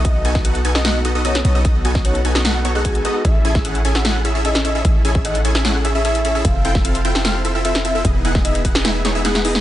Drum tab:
HH |x-x-xxx-x-x-xxx-|x-x-xxx-x-x-xxx-|x-x-xxx-x-x-xxx-|x-x-xxx-x-x-xxx-|
SD |---o---oo----o--|---o---oo-------|---o---oo----o--|-------oo-------|
BD |o--o------------|o--o--------o---|o--o------------|o--o------------|

HH |x-x-xxx-x-x-xxx-|x-x-xxx-x-x-xxo-|
SD |---o---oo----o--|---o---oo-o-oo-o|
BD |o--o------------|o--o--o---------|